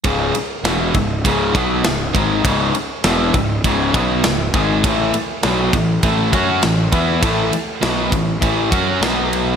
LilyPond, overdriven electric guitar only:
\new Staff \with { instrumentName = "Overdriven electric guitar" } { \clef bass \time 4/4 \key cis \minor \tempo 4 = 100 <cis, gis, cis>8 r8 <e, b, e>8 <cis, gis,>8 <cis, gis, cis>8 <b, fis b>8 <cis, gis,>8 <gis, dis gis>8 | <cis, gis, cis>8 r8 <e, b, e>8 <cis, gis,>8 <cis, gis, cis>8 <b, fis b>8 <cis, gis,>8 <gis, dis gis>8 | <a, e a>8 r8 <b, fis b>8 <a, e>8 <a, e a>8 <fis cis' fis'>8 <a, e>8 <e b e'>8 | <a, e a>8 r8 <b, fis b>8 <a, e>8 <a, e a>8 <fis cis' fis'>8 <b, fis b>4 | }